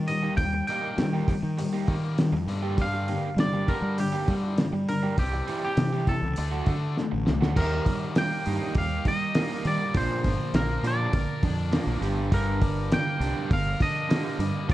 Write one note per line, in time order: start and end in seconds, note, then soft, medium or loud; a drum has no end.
0.00 0.28 D#3 medium
0.08 0.36 D#3 medium
0.08 0.36 G3 medium
0.08 0.36 D#5 medium
0.08 open hi-hat soft
0.23 0.43 G3 medium
0.23 0.43 A#3 medium
0.23 0.43 D#4 medium
0.23 0.43 G4 medium
0.37 0.61 D#2 medium
0.37 0.66 D#3 medium
0.37 0.66 G3 medium
0.37 0.66 G5 loud
0.37 kick loud
0.37 open hi-hat medium
0.53 muted overdriven electric guitar stroke soft
0.67 0.97 D#3 medium
0.67 0.88 G3 medium
0.67 0.97 G3 medium
0.67 0.88 A#3 medium
0.67 0.97 A#3 medium
0.67 0.88 D#4 medium
0.67 0.89 G4 medium
0.67 2.44 G5 medium
0.67 open hi-hat medium
0.98 1.21 D#3 medium
0.98 1.26 D#3 medium
0.98 1.26 G3 medium
0.98 muted overdriven electric guitar stroke soft
0.98 snare medium
0.98 open hi-hat medium
1.13 1.34 G3 medium
1.13 1.33 A#3 medium
1.13 1.33 D#4 medium
1.13 1.33 G4 medium
1.28 1.56 D#3 medium
1.28 1.56 G3 medium
1.28 kick medium
1.28 open hi-hat soft
1.43 1.66 D#3 medium
1.58 1.86 D#3 medium
1.58 1.86 G3 medium
1.58 muted overdriven electric guitar stroke soft
1.58 open hi-hat medium
1.73 1.93 G3 medium
1.73 1.93 A#3 medium
1.73 1.93 D#4 medium
1.73 1.93 G4 medium
1.88 2.34 D#3 medium
1.88 2.16 D#3 medium
1.88 2.17 G3 medium
1.88 2.17 A#3 medium
1.88 kick medium
1.88 open hi-hat soft
2.18 2.46 D#3 medium
2.18 2.46 G3 medium
2.18 snare loud
2.18 open hi-hat medium
2.32 2.44 F2 medium
2.32 muted overdriven electric guitar stroke soft
2.47 3.17 G2 medium
2.47 2.76 G2 medium
2.47 2.77 D3 loud
2.47 2.77 G3 medium
2.47 open hi-hat soft
2.63 2.83 G3 medium
2.63 2.83 A#3 medium
2.63 2.83 D4 medium
2.63 2.82 G4 medium
2.78 3.07 G2 medium
2.78 3.07 D3 medium
2.78 3.07 G3 loud
2.78 3.40 F5 loud
2.78 kick loud
2.78 open hi-hat medium
2.93 muted overdriven electric guitar stroke soft
3.08 3.35 G2 medium
3.08 3.36 D3 medium
3.08 3.28 G3 medium
3.08 3.28 A#3 medium
3.08 3.28 D4 medium
3.08 3.29 G4 medium
3.08 open hi-hat soft
3.37 3.66 G2 medium
3.37 3.66 D3 medium
3.37 3.60 G3 medium
3.37 3.70 D5 medium
3.37 muted overdriven electric guitar stroke soft
3.37 snare loud
3.37 open hi-hat medium
3.53 3.73 G3 medium
3.53 3.73 A#3 medium
3.53 3.73 D4 medium
3.53 3.73 G4 medium
3.68 3.97 G2 medium
3.68 3.97 D3 medium
3.68 3.97 G3 medium
3.68 3.99 A#4 medium
3.68 kick medium
3.68 open hi-hat soft
3.82 4.06 G3 medium
3.98 4.26 G2 medium
3.98 4.26 D3 medium
3.98 4.55 G4 medium
3.98 muted overdriven electric guitar stroke soft
3.98 open hi-hat medium
4.13 4.33 G3 medium
4.13 4.33 A#3 medium
4.13 4.33 D4 medium
4.13 4.32 G4 medium
4.28 4.56 G2 medium
4.28 4.57 D3 medium
4.28 4.63 G3 medium
4.28 4.57 G3 loud
4.28 kick medium
4.28 open hi-hat soft
4.58 4.85 G2 medium
4.58 4.86 D3 medium
4.58 snare loud
4.58 open hi-hat medium
4.73 5.07 G3 medium
4.73 muted overdriven electric guitar stroke soft
4.88 5.15 G2 medium
4.88 5.16 D3 medium
4.88 5.19 A#4 medium
4.88 open hi-hat soft
5.03 5.18 G3 medium
5.03 5.18 A#3 medium
5.03 5.18 D4 medium
5.03 5.18 G4 medium
5.18 5.41 C2 medium
5.18 5.46 C3 medium
5.18 5.47 E3 medium
5.18 5.47 G3 medium
5.18 5.63 G4 medium
5.18 kick loud
5.18 open hi-hat medium
5.33 muted overdriven electric guitar stroke soft
5.48 5.76 C3 medium
5.48 5.67 E3 medium
5.48 5.77 E3 medium
5.48 5.67 G3 medium
5.48 5.77 G3 loud
5.48 5.68 E4 medium
5.48 5.68 G4 medium
5.48 open hi-hat soft
5.65 6.05 G4 medium
5.77 6.23 C3 medium
5.77 6.05 C3 medium
5.77 6.05 E3 medium
5.77 muted overdriven electric guitar stroke soft
5.77 snare medium
5.77 open hi-hat medium
5.93 6.12 E3 medium
5.93 6.12 G3 medium
5.93 6.12 E4 medium
5.93 6.12 G4 medium
6.07 6.35 C3 medium
6.07 6.35 E3 medium
6.07 7.24 A4 medium
6.07 kick medium
6.07 open hi-hat soft
6.22 6.34 C#2 medium
6.36 6.61 D2 medium
6.36 6.66 D3 medium
6.36 6.66 A3 medium
6.36 6.66 D4 medium
6.36 muted overdriven electric guitar stroke soft
6.36 open hi-hat medium
6.52 6.72 F#3 medium
6.52 6.72 A3 medium
6.52 6.72 D4 medium
6.52 6.71 F#4 medium
6.66 7.02 D3 medium
6.66 6.95 D3 medium
6.66 6.96 A3 medium
6.66 6.96 D4 medium
6.66 kick medium
6.66 open hi-hat soft
6.97 7.24 D3 medium
6.97 7.24 A3 medium
6.97 snare medium
7.12 7.26 A1 medium
7.12 muted overdriven electric guitar stroke soft
7.26 7.41 C2 medium
7.26 7.53 D3 medium
7.26 7.54 A3 medium
7.26 snare medium
7.41 7.56 D2 medium
7.41 7.56 F#3 medium
7.41 7.57 A3 medium
7.41 7.57 D4 medium
7.41 7.56 F#4 medium
7.41 snare medium
7.56 7.80 D#2 medium
7.56 7.84 D#3 medium
7.56 9.06 D#3 medium
7.56 7.85 G3 medium
7.56 7.85 A#3 medium
7.56 8.18 A#4 medium
7.56 kick loud
7.56 crash loud
7.86 8.13 D#3 medium
7.86 8.13 G3 medium
7.86 9.35 G3 medium
7.86 kick medium
7.86 open hi-hat medium
8.15 8.43 D#3 medium
8.15 8.43 G3 medium
8.15 9.35 A#3 medium
8.15 8.73 G5 loud
8.15 snare loud
8.15 open hi-hat medium
8.46 8.58 G2 medium
8.46 8.74 D#3 medium
8.46 8.74 G3 medium
8.46 8.75 A#3 medium
8.46 9.04 D#4 medium
8.46 open hi-hat medium
8.75 8.98 D#2 medium
8.75 9.03 D#3 medium
8.75 9.03 G3 medium
8.75 9.95 G4 medium
8.75 9.08 F5 medium
8.75 kick loud
8.75 open hi-hat medium
9.05 9.33 D#3 medium
9.05 9.33 G3 medium
9.05 9.95 D#4 medium
9.05 9.67 D#5 medium
9.05 kick medium
9.05 open hi-hat medium
9.35 9.64 D#3 medium
9.35 9.64 G3 medium
9.35 10.54 A#3 medium
9.35 9.64 A#3 medium
9.35 snare loud
9.35 open hi-hat medium
9.65 9.77 D#3 medium
9.65 9.92 D#3 medium
9.65 9.95 G3 medium
9.65 9.92 G3 medium
9.65 9.97 D5 medium
9.65 open hi-hat medium
9.94 10.06 A#1 loud
9.94 11.43 A#2 medium
9.94 10.23 A#2 medium
9.94 10.23 D3 medium
9.94 10.23 F3 loud
9.94 10.55 C5 medium
9.94 kick loud
9.94 open hi-hat medium
10.24 10.36 G1 loud
10.24 10.51 A#2 medium
10.24 10.51 D3 medium
10.24 11.73 F3 medium
10.24 kick medium
10.24 open hi-hat medium
10.54 10.77 A#1 medium
10.54 10.81 A#2 medium
10.54 10.81 D3 medium
10.54 11.72 A#3 medium
10.54 10.86 A#4 medium
10.54 snare loud
10.54 open hi-hat medium
10.83 11.06 A#2 medium
10.83 11.12 A#2 medium
10.83 11.12 D3 medium
10.83 11.13 F3 medium
10.83 11.43 D4 medium
10.83 open hi-hat medium
10.87 12.01 D5 medium
11.13 11.25 A#1 medium
11.13 11.40 A#2 medium
11.13 11.41 D3 medium
11.13 12.03 A#4 medium
11.13 kick loud
11.13 open hi-hat medium
11.43 11.78 F2 medium
11.43 11.70 A#2 medium
11.43 11.70 D3 medium
11.43 12.03 D4 medium
11.43 kick medium
11.43 open hi-hat medium
11.72 12.00 A#2 medium
11.72 12.01 D3 loud
11.72 12.01 F3 loud
11.72 12.03 A#3 medium
11.72 snare loud
11.72 open hi-hat medium
11.87 11.99 A#1 medium
12.01 12.94 G1 medium
12.01 12.30 G2 medium
12.01 12.31 G2 medium
12.01 12.30 D3 medium
12.01 12.30 G3 medium
12.01 open hi-hat soft
12.31 12.60 G2 medium
12.31 13.81 G2 medium
12.31 12.60 D3 medium
12.31 12.60 G3 medium
12.31 12.94 A#4 medium
12.31 kick loud
12.31 open hi-hat medium
12.61 12.88 G2 medium
12.61 12.89 D3 medium
12.61 14.10 G3 medium
12.61 kick medium
12.61 open hi-hat medium
12.92 13.18 G2 medium
12.92 13.19 D3 medium
12.92 14.08 A#3 medium
12.92 13.53 G5 loud
12.92 snare loud
12.92 open hi-hat medium
13.20 13.32 C2 medium
13.20 13.49 G2 medium
13.20 13.49 D3 medium
13.20 13.49 G3 medium
13.20 13.79 D4 medium
13.20 open hi-hat medium
13.51 13.74 G1 medium
13.51 13.78 G2 medium
13.51 13.78 D3 medium
13.51 14.70 A#4 medium
13.51 13.82 F5 medium
13.51 kick loud
13.51 open hi-hat medium
13.80 14.07 G2 medium
13.80 14.08 D3 medium
13.80 14.70 D4 medium
13.80 14.71 D#5 loud
13.80 kick medium
13.80 open hi-hat medium
14.09 14.38 G2 medium
14.09 14.38 D3 medium
14.09 14.38 G3 medium
14.09 14.69 A#3 medium
14.09 snare loud
14.09 open hi-hat medium
14.39 14.51 G2 medium
14.39 14.67 G2 medium
14.39 14.67 D3 medium
14.39 14.69 G3 medium
14.39 open hi-hat medium
14.69 14.74 F1 loud
14.69 14.74 F3 loud
14.69 14.74 F3 medium
14.69 14.74 C4 medium
14.69 14.74 F4 medium
14.69 kick loud
14.69 open hi-hat medium